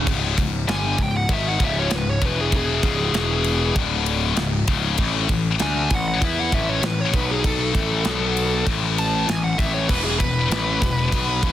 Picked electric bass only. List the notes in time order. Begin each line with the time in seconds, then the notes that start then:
0.07 C#1
0.37 C#1
0.68 G1
0.98 C#1
1.29 G#1
1.60 C#1
1.91 C#1
2.22 E1
2.83 C#1
3.13 E1
3.75 D1
4.35 C#1
4.68 C#1
4.98 A1
5.29 A1
5.62 D2
5.90 A1
6.21 E2
6.53 A1
6.82 A1
7.13 B1
7.75 A1
8.05 B1
8.66 A1
9.29 A1
9.58 A1
9.90 E1
10.20 E1
10.50 A1
10.82 E1
11.12 B1
11.43 E1